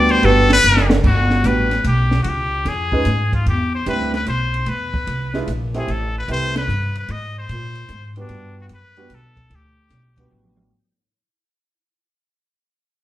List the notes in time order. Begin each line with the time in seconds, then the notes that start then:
Already playing: D2 G3 B3 D4 F#4 B4 D5
0.09 C5, ride
0.22 G1 G3 B3 D4 F#4 A4 B4, kick, ride
0.50 B4, snare
0.64 F#1, hi-hat pedal
0.77 snare
0.90 snare
1.04 G1 F#4, kick, crash
1.30 snare
1.44 A1 G3 B3 D4 F#4 B4, kick, hi-hat pedal, ride
1.71 snare, ride
1.84 B1 G4, kick, hi-hat pedal, ride
2.11 snare
2.23 C#2 F#4, kick, ride
2.29 G4
2.65 F2 G#4, kick, snare, ride
2.92 G#3 C#4 D#4 F4 B4, kick
3.05 G#2, kick, hi-hat pedal, ride
3.33 F4, kick, ride
3.46 E2 G4, kick, ride
3.75 C5
3.86 D2 G3 C4 D4 E4 B4, kick, hi-hat pedal, ride
4.00 snare
4.14 B4, snare, ride
4.26 B1 C5, kick, hi-hat pedal, ride
4.54 ride
4.66 E2 B4, kick, ride
4.94 kick
5.07 C2, kick, ride
5.34 G#3 D4 E4 F4 B4, snare
5.47 A#1, kick, hi-hat pedal, ride
5.74 A3 C4 E4 G4 G#4 C5, snare, ride
5.88 A1 A4, kick, ride
6.18 B4
6.28 C2 A3 C4 E4 G4 B4 C5, kick, hi-hat pedal, ride
6.56 B4, snare, ride
6.68 G2, hi-hat pedal
6.95 B4, ride
7.08 G#2 D#5, kick, ride
7.39 C5
7.49 A#2, kick, hi-hat pedal, ride
7.75 ride
7.89 G#2, kick, hi-hat pedal, ride
8.16 G3 B3 D4 F#4 B4, ride
8.21 D4
8.29 G2, kick, ride
8.61 F#4
8.69 F#2, kick, hi-hat pedal, ride
8.74 B4
8.96 G3 B3 D4 F#4 B4, ride
9.10 B1, kick, hi-hat pedal, ride
9.15 A4
9.37 kick, ride
9.50 D2, kick, ride
9.55 G4
9.90 B1, kick, snare, hi-hat pedal, ride
10.17 G3 B3 D4 F#4 B4, kick, ride
10.31 A1, high tom
10.44 high tom
10.57 high tom